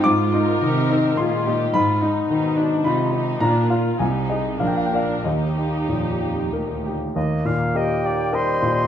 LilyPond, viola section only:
\new Staff \with { instrumentName = "Viola section" } { \time 3/4 \key ees \major \tempo 4 = 102 << { f'8 bes'4. aes'8 g'8 | f'8 ees'4. ees'4 | f'2 bes'4 | g'2~ g'8 r8 |
r2. | } \\ { f'4 ees'8 c'8 f'4~ | f'4 ees'8 d'8 ees'8 ees'8 | d'8 f'8 ees'4 d'8 d'8 | ees'2~ ees'8 r8 |
r2. | } >> }